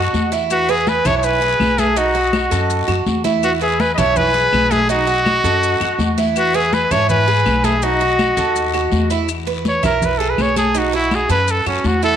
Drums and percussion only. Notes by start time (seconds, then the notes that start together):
0.14 high conga, short guiro, maracas
0.32 short guiro, maracas
0.50 high conga, long guiro, claves, maracas
0.69 high conga, maracas
0.87 high conga, short guiro, maracas
1.05 low conga, short guiro, claves, maracas
1.23 high conga, long guiro, maracas
1.42 high conga, maracas
1.60 high conga, short guiro, claves, maracas
1.78 high conga, short guiro, maracas
1.97 high conga, long guiro, maracas
2.15 high conga, maracas
2.33 high conga, short guiro, claves, maracas
2.51 high conga, short guiro, maracas
2.70 high conga, long guiro, maracas
2.88 high conga, claves, maracas
3.06 high conga, short guiro, maracas
3.25 high conga, short guiro, maracas
3.43 high conga, long guiro, claves, maracas
3.61 high conga, maracas
3.80 high conga, short guiro, maracas
3.98 low conga, short guiro, claves, maracas
4.16 high conga, low conga, long guiro, maracas
4.35 high conga, maracas
4.53 high conga, short guiro, claves, maracas
4.71 high conga, short guiro, maracas
4.89 high conga, long guiro, maracas
5.08 high conga, maracas
5.26 high conga, short guiro, claves, maracas
5.44 high conga, short guiro, maracas
5.63 high conga, long guiro, maracas
5.81 high conga, claves, maracas
5.99 high conga, short guiro, maracas
6.18 high conga, short guiro, maracas
6.36 high conga, long guiro, claves, maracas
6.54 high conga, maracas
6.73 high conga, short guiro, maracas
6.91 low conga, short guiro, claves, maracas
7.09 high conga, low conga, long guiro, maracas
7.28 high conga, maracas
7.46 high conga, short guiro, claves, maracas
7.64 high conga, short guiro, maracas
7.82 high conga, long guiro, maracas
8.01 high conga, maracas
8.19 high conga, short guiro, claves, maracas
8.37 high conga, short guiro, maracas
8.55 high conga, long guiro, maracas
8.74 high conga, claves, maracas
8.92 high conga, short guiro, maracas
9.10 short guiro, maracas
9.28 high conga, long guiro, claves, maracas
9.47 high conga, maracas
9.65 high conga, short guiro, maracas
9.83 low conga, short guiro, claves, maracas
10.02 high conga, low conga, long guiro, maracas
10.20 high conga, maracas
10.38 high conga, short guiro, claves, maracas
10.57 high conga, short guiro, maracas
10.75 high conga, long guiro, maracas
10.93 high conga, maracas
11.11 high conga, short guiro, claves, maracas
11.30 high conga, short guiro, maracas
11.48 high conga, long guiro, maracas
11.66 high conga, claves, maracas
11.84 high conga, short guiro, maracas
12.02 short guiro, maracas